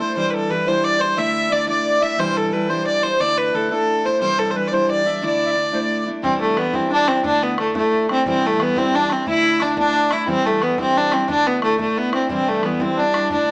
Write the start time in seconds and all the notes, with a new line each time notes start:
0.00 A3 D4 E4 C5
0.16 C3 E3 G3 D4 E4 C5
0.30 A4 B4
0.34 A4
0.49 E3 G3 D4 E4 B4
0.66 C3 E3 G3 D4 E4 C5
0.84 D5
0.99 G3 D4 E4 C5
1.16 D3 A3 D4 E4 E5
1.49 D3 A3 D4 E4 D5
1.67 D3 A3 D4 E4 D5
2.00 A3 D4 E4 E5
2.18 C3 E3 G3 D4 E4 C5
2.35 A4
2.51 E3 G3 D4 E4 B4
2.69 C3 E3 G3 D4 E4 C5
2.85 D5
3.02 G3 D4 E4 C5
3.19 D3 A3 D4 E4 D5
3.37 B4
3.53 D3 A3 D4 E4 A4
3.71 D3 A3 D4 E4 A4
4.04 A3 D4 E4 C5
4.21 C3 E3 G3 D4 E4 C5
4.38 A4
4.50 E3 C5
4.55 G3 D4 E4 B4
4.68 E4 D5
4.72 C3 E3 G3 D4 C5
4.89 D5
5.04 G3 D4 E4 E5
5.22 D3 A3 D4 E4 D5
5.46 D5 E5
5.55 D3 A3 D4 E4
5.72 D3 A3 D4 E4 C5
5.78 D5
6.06 A3 D4 E4
6.22 C3 E3 G3 C4 D4 E4, bodhran
6.39 A3, bodhran
6.57 E3 G3 B3 D4 E4, bodhran
6.66 bodhran
6.73 C3 E3 G3 C4 D4 E4, bodhran
6.82 bodhran
6.90 D4
7.07 G3 C4 D4 E4, bodhran
7.24 D3 A3 D4 E4, bodhran
7.41 B3, bodhran
7.58 D3 A3 D4 E4, bodhran
7.67 bodhran
7.75 D3 A3 D4 E4, bodhran
7.92 bodhran
8.08 A3 C4 D4 E4, bodhran
8.25 C3 E3 G3 C4 D4 E4, bodhran
8.39 B3
8.43 A3, bodhran
8.58 E3 G3 B3 D4 E4, bodhran
8.68 bodhran
8.76 C3 E3 G3 C4 D4 E4, bodhran
8.85 bodhran
8.93 D4, bodhran
9.09 G3 C4 D4 E4, bodhran
9.26 D3 A3 D4 E4, bodhran
9.43 bodhran
9.60 D3 A3 D4 E4, bodhran
9.68 bodhran
9.76 D3 A3 D4 E4, bodhran
9.86 bodhran
9.94 bodhran
10.10 A3 D4 E4, bodhran
10.27 C3 E3 G3 C4 D4 E4, bodhran
10.45 A3, bodhran
10.61 E3 G3 B3 D4 E4, bodhran
10.70 bodhran
10.78 C3 E3 G3 C4 D4 E4, bodhran
10.87 bodhran
10.95 D4, bodhran
11.11 G3 C4 D4 E4, bodhran
11.28 D3 A3 D4 E4, bodhran
11.45 B3, bodhran
11.62 D3 A3 D4 E4, bodhran
11.71 bodhran
11.78 D3 A3 D4 E4, bodhran
11.87 bodhran
11.96 B3, bodhran
12.12 A3 C4 D4 E4, bodhran
12.29 C3 E3 G3 C4 D4 E4, bodhran
12.47 A3, bodhran
12.63 E3 G3 B3 D4 E4, bodhran
12.72 bodhran
12.80 C3 E3 G3 C4 D4 E4, bodhran
12.88 bodhran
12.96 D4, bodhran
13.14 G3 D4 E4, bodhran
13.30 D3 A3 D4 E4, bodhran
13.48 bodhran